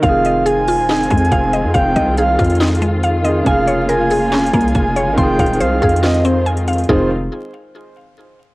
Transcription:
0.00 808-style bass F1, grand piano D#3 C4, string section D#3 G#3 C4 F4, synth pluck F5, soft synth lead F5, kick, closed hi-hat
0.05 grand piano F4 G#4
0.25 synth pluck D#5, closed hi-hat
0.46 synth pluck G#4, soft synth lead G#5, closed hi-hat
0.68 synth pluck F4, open hi-hat
0.78 808-style bass D#1
0.89 synth pluck D#4, snare, clap, closed hi-hat
0.94 808-style bass F1, closed hi-hat
1.03 closed hi-hat
1.10 808-style bass F2, synth pluck G#3, kick, closed hi-hat
1.18 closed hi-hat
1.25 closed hi-hat
1.32 808-style bass F1, synth pluck F5, kick, closed hi-hat
1.53 synth pluck D#5, closed hi-hat
1.64 808-style bass F2
1.74 808-style bass F1, synth pluck F5, soft synth lead G5, kick, closed hi-hat
1.96 808-style bass C2, synth pluck D#5, kick, closed hi-hat
2.18 synth pluck G#4, soft synth lead F5, closed hi-hat
2.39 808-style bass F2, synth pluck F4, kick, closed hi-hat
2.44 closed hi-hat
2.50 closed hi-hat
2.55 closed hi-hat
2.60 synth pluck D#4, snare, clap, closed hi-hat
2.68 closed hi-hat
2.75 closed hi-hat
2.82 synth pluck G#3, closed hi-hat
3.03 synth pluck F5, closed hi-hat
3.23 grand piano D#3 C4 F4, synth pluck D#5, closed hi-hat
3.28 grand piano G#4
3.41 grand piano C#3 A#3
3.46 808-style bass F1, string section C#3 G#3 A#3, grand piano F4, soft synth lead F5, synth pluck G#5, kick, closed hi-hat
3.51 grand piano G#4
3.67 synth pluck C#5, closed hi-hat
3.89 synth pluck A#4, soft synth lead G#5, closed hi-hat
4.10 synth pluck G#4, open hi-hat
4.32 synth pluck C#4, snare, clap, closed hi-hat
4.39 closed hi-hat
4.46 closed hi-hat
4.53 808-style bass C2, synth pluck A#3, kick, closed hi-hat
4.61 closed hi-hat
4.68 closed hi-hat
4.75 808-style bass F1, synth pluck G#5, kick, closed hi-hat
4.96 synth pluck C#5, closed hi-hat
5.07 808-style bass G#1
5.13 grand piano D#3 C4
5.17 808-style bass F1, string section D#3 C4, grand piano F4, soft synth lead G5, synth pluck C6, kick, closed hi-hat
5.23 grand piano G#4
5.39 808-style bass D#1, synth pluck F5, kick, closed hi-hat
5.46 closed hi-hat
5.53 closed hi-hat
5.60 808-style bass C2, synth pluck C5, soft synth lead F5, closed hi-hat
5.82 808-style bass F2, synth pluck G#4, kick, closed hi-hat
5.89 closed hi-hat
5.96 closed hi-hat
6.03 synth pluck F4, soft synth lead D#5, snare, clap, closed hi-hat
6.14 closed hi-hat
6.25 synth pluck C4, soft synth lead C5, closed hi-hat
6.46 synth pluck G#5, closed hi-hat
6.57 closed hi-hat
6.68 synth pluck F5, closed hi-hat
6.73 closed hi-hat
6.78 closed hi-hat
6.84 closed hi-hat
6.89 808-style bass F1, grand piano D#3 C4 F4 G#4, string section D#3 G#3 C4 F4, synth pluck D#4 F4 G#4, soft synth lead C5, kick, floor tom

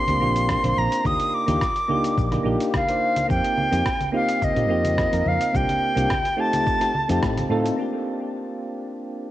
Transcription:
Already playing: flute C6
0.07 fretless electric bass D2, synth keys A#3 C4 D4 F4 G4, closed hi-hat, shaker
0.20 fretless electric bass A#1, synth keys A#3 C4 D4 F4 G4, low conga
0.36 closed hi-hat, shaker
0.49 kick, cross-stick, shaker
0.63 fretless electric bass A#1, synth keys A#3 C4 D4 F4 C5, closed hi-hat, low conga, shaker
0.77 fretless electric bass A#1, flute A#5
0.92 closed hi-hat, shaker
1.04 fretless electric bass D#2, synth keys A#3 D4 D#4 F4 G4, flute D#6, kick, low conga, shaker
1.20 closed hi-hat, shaker
1.35 flute D6
1.47 fretless electric bass D#2, synth keys A#3 D4 D#4 F4 G4, closed hi-hat, low conga, shaker
1.61 kick, cross-stick, shaker
1.76 closed hi-hat, shaker
1.88 synth keys A#3 D4 D#4 F4 G4, low conga
2.04 closed hi-hat, shaker
2.18 fretless electric bass A#1, kick, shaker
2.31 synth keys A#3 D4 D#4 F4 G4, cross-stick, closed hi-hat, low conga, shaker
2.43 fretless electric bass A#1, synth keys A#3 D4 D#4 F4 G4
2.60 closed hi-hat, shaker
2.74 flute F5, kick, cross-stick, low conga, shaker
2.87 synth keys A#3 D4 D#4 F4 C5, closed hi-hat, shaker
3.16 closed hi-hat, low conga, shaker
3.27 fretless electric bass F2, synth keys A#3 C4 D#4 F4 G4, flute G5, kick, shaker
3.44 closed hi-hat, shaker
3.57 low conga
3.71 fretless electric bass F2, synth keys A#3 C4 D#4 F4 G4, closed hi-hat, shaker
3.86 kick, cross-stick, shaker
4.00 closed hi-hat, low conga, shaker
4.12 synth keys A#3 C4 D#4 F4 G4, flute F5
4.29 closed hi-hat, shaker
4.42 flute D#5, kick, low conga, shaker
4.55 fretless electric bass A#2, synth keys A#3 C4 D#4 F4 G4, closed hi-hat, shaker
4.69 fretless electric bass F2, synth keys A#3 C4 D#4 F4 G4
4.85 closed hi-hat, low conga, shaker
4.98 kick, cross-stick, shaker
5.11 fretless electric bass F2, synth keys A#3 C4 D#4 F4 A#4, closed hi-hat, shaker
5.26 fretless electric bass F2, flute F5, low conga
5.41 closed hi-hat, shaker
5.52 fretless electric bass C2, synth keys A#3 C4 D4 F4 G4, flute G5, kick, shaker
5.69 closed hi-hat, low conga, shaker
5.95 fretless electric bass C2, synth keys A#3 C4 D4 F4 G4, closed hi-hat, shaker
6.10 kick, cross-stick, low conga, shaker
6.25 closed hi-hat, shaker
6.37 synth keys A3 C4 D#4 F4 G4, flute A5
6.53 closed hi-hat, low conga, shaker
6.67 kick, shaker
6.79 synth keys A3 C4 D#4 F4 G4, cross-stick, closed hi-hat, shaker
6.94 low conga
7.08 fretless electric bass F2, synth keys A3 C4 D#4 F4 G4, closed hi-hat, shaker
7.23 fretless electric bass A2, kick, cross-stick, shaker
7.37 closed hi-hat, low conga, shaker
7.49 fretless electric bass A2, synth keys A3 C4 D#4 F4 A4
7.66 closed hi-hat, shaker
7.76 synth keys A#3 C4 D4 F4, shaker
7.81 synth keys G4
7.94 shaker
8.22 shaker
8.35 shaker
8.50 shaker
8.78 shaker
8.91 shaker
9.06 shaker

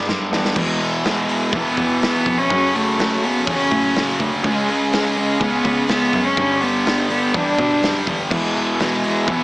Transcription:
Already playing: clean electric guitar B3 G4
0.07 cello F#2, overdriven electric guitar G2 D3 G3, clean electric guitar G3, snare
0.32 cello E2, overdriven electric guitar G2 D3 G3, clean electric guitar B3, snare
0.45 snare
0.56 cello E2 G#3, overdriven electric guitar E2 B2 E3, string section E3 E4 G#4 B4, kick, crash
0.80 overdriven electric guitar E2 B2 E3, open hi-hat
1.05 overdriven electric guitar E2 B2 E3, cello G#3, snare, open hi-hat
1.28 overdriven electric guitar E2 B2 E3, open hi-hat
1.52 cello E2 B3, overdriven electric guitar E2 B2 E3, kick, open hi-hat
1.77 cello E2, overdriven electric guitar E2 B2 E3, kick, open hi-hat
2.02 overdriven electric guitar E2 B2 E3, cello B3, snare, open hi-hat
2.26 overdriven electric guitar E2 B2 E3, cello F2, kick, open hi-hat
2.38 cello C#4
2.50 overdriven electric guitar F#2 C#3 F#3, cello F#2, string section F#3 F#4 A4 C#5, kick, open hi-hat
2.74 overdriven electric guitar F#2 C#3 F#3, cello A3, open hi-hat
2.98 overdriven electric guitar F#2 C#3 F#3, snare, open hi-hat
3.23 overdriven electric guitar F#2 C#3 F#3, cello B3, open hi-hat
3.47 cello E2 C#4, overdriven electric guitar F#2 C#3 F#3, kick, open hi-hat
3.71 overdriven electric guitar F#2 C#3 F#3, cello A2, kick, open hi-hat
3.95 overdriven electric guitar F#2 C#3 F#3, snare, open hi-hat
4.20 cello D2, overdriven electric guitar F#2 C#3 F#3, kick, open hi-hat
4.44 cello C#2 G#3, overdriven electric guitar C#3 G#3 C#4, string section C#3 C#4 G#4 F5, kick, open hi-hat
4.68 overdriven electric guitar C#3 G#3 C#4, open hi-hat
4.92 overdriven electric guitar C#3 G#3 C#4, cello G#3, snare, open hi-hat
5.17 overdriven electric guitar C#3 G#3 C#4, open hi-hat
5.40 cello C#2 B3, overdriven electric guitar C#3 G#3 C#4, kick, open hi-hat
5.65 cello C#2, overdriven electric guitar C#3 G#3 C#4, kick, open hi-hat
5.88 overdriven electric guitar C#3 G#3 C#4, cello B3, snare, open hi-hat
6.13 cello F#2, overdriven electric guitar C#3 G#3 C#4, kick, open hi-hat
6.25 cello C#4
6.37 overdriven electric guitar G2 D3 G3, cello G2, string section G3 D4 B4 G5, kick
6.62 overdriven electric guitar G2 D3 G3, cello B3, open hi-hat
6.86 overdriven electric guitar G2 D3 G3, snare, open hi-hat
7.10 overdriven electric guitar G2 D3 G3, cello B3, open hi-hat
7.34 cello E2 D4, overdriven electric guitar G2 D3 G3, kick, open hi-hat
7.59 overdriven electric guitar G2 D3 G3, cello B2, kick
7.82 cello F#2, overdriven electric guitar G2 D3 G3, snare, open hi-hat
8.07 cello E2, overdriven electric guitar G2 D3 G3, kick, open hi-hat
8.31 cello E2 G#3, overdriven electric guitar E2 B2 E3, string section E3 B3 G#4 E5, kick, crash
8.55 overdriven electric guitar E2 B2 E3, open hi-hat
8.79 overdriven electric guitar E2 B2 E3, cello G#3, snare, open hi-hat
9.04 overdriven electric guitar E2 B2 E3, open hi-hat
9.27 cello E2 B3, overdriven electric guitar E2 B2 E3, kick, open hi-hat

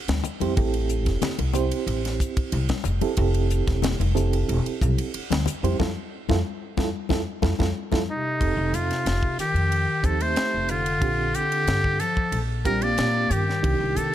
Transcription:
0.08 upright bass D2, snare, ride, high conga
0.24 hi-hat pedal, low conga
0.40 upright bass F2, reed electric piano C4 E4 G4 C5, ride, high conga
0.57 upright bass A1, reed electric piano C4 G4 A4, kick, ride
0.74 ride
0.89 hi-hat pedal
1.06 upright bass F1, kick, snare, ride
1.22 muted upright bass stroke, snare, ride, high conga, low conga
1.39 upright bass C2, ride, high conga
1.54 reed electric piano C4 E4 G4 C5, hi-hat pedal, low conga
1.71 ride
1.87 upright bass A1, ride
2.05 snare, ride
2.20 kick, hi-hat pedal
2.37 muted upright bass stroke, kick, ride
2.52 upright bass C2, ride
2.69 kick, snare, ride, high conga
2.84 upright bass F1, hi-hat pedal, low conga
3.01 reed electric piano C4 E4 G4 A4, ride, high conga
3.17 upright bass F1, reed electric piano C4 E4 G4 A4, kick, ride
3.34 ride
3.50 hi-hat pedal
3.67 upright bass E1, kick, snare, ride
3.82 snare, ride, high conga, low conga
4.00 upright bass F1, ride, high conga
4.15 reed electric piano C4 E4 G4 A4, hi-hat pedal, low conga
4.33 ride
4.48 upright bass E1, ride
4.66 muted upright bass stroke, ride
4.81 upright bass C2, kick, hi-hat pedal
4.98 ride
5.14 muted upright bass stroke, ride
5.30 upright bass D2, snare, ride, high conga
5.46 hi-hat pedal, low conga
5.63 upright bass F2, reed electric piano C4 E4 G4 C5, ride, high conga
5.79 upright bass F2, reed electric piano E4 F4 A4, kick, snare, high conga
6.29 upright bass F2, reed electric piano E4 F4 A4, kick, snare, high conga
6.77 upright bass F2, reed electric piano E4 F4 A4, kick, snare, high conga
7.09 upright bass F2, reed electric piano E4 F4 A4, kick, snare, high conga
7.42 upright bass F2, reed electric piano E4 F4 A4, kick, snare, high conga
7.59 upright bass F2, reed electric piano E4 F4 A4, kick, snare, high conga
7.92 upright bass F2, reed electric piano E4 F4 A4, kick, snare, high conga
8.10 bass clarinet C3, muted trumpet D#4
8.40 upright bass F1, reed electric piano C4 D#4 G4 A4, kick, ride
8.57 upright bass F1
8.73 upright bass F2, bass clarinet C3, muted trumpet F4, hi-hat pedal, ride
8.91 snare, ride
9.06 upright bass F1, snare, ride
9.23 kick
9.38 bass clarinet D#3, muted trumpet G4, muted upright bass stroke, snare, hi-hat pedal, ride
9.54 upright bass F2, ride
9.72 ride
10.03 upright bass D#2, bass clarinet F3, reed electric piano C4 D#4 G4 C5, muted trumpet A4, kick, hi-hat pedal, ride
10.21 bass clarinet A3, muted trumpet C5, ride
10.36 muted upright bass stroke, snare, ride
10.54 upright bass F1
10.69 bass clarinet D3, muted trumpet F4, hi-hat pedal, ride
10.86 ride
11.02 upright bass A#1, reed electric piano C4 D4 F4 G4, kick, ride
11.35 bass clarinet D3, muted trumpet G4, hi-hat pedal, ride
11.52 ride
11.67 upright bass G2, snare, ride
11.84 kick
12.00 bass clarinet F3, muted trumpet A4, hi-hat pedal, ride
12.17 kick
12.32 upright bass A#1, ride
12.65 bass clarinet G3, reed electric piano C4 D4 F4 G4, muted trumpet A#4, kick, hi-hat pedal, ride
12.82 bass clarinet A#3, muted trumpet D5, ride
12.98 upright bass A#2, snare, ride
13.30 upright bass G2, bass clarinet D#3, muted trumpet G4, hi-hat pedal, ride
13.49 snare
13.63 upright bass C2, reed electric piano A#3 D4 D#4 G4, kick, ride
13.80 upright bass C2
13.96 upright bass C3, bass clarinet D#3, muted trumpet A4, hi-hat pedal, ride

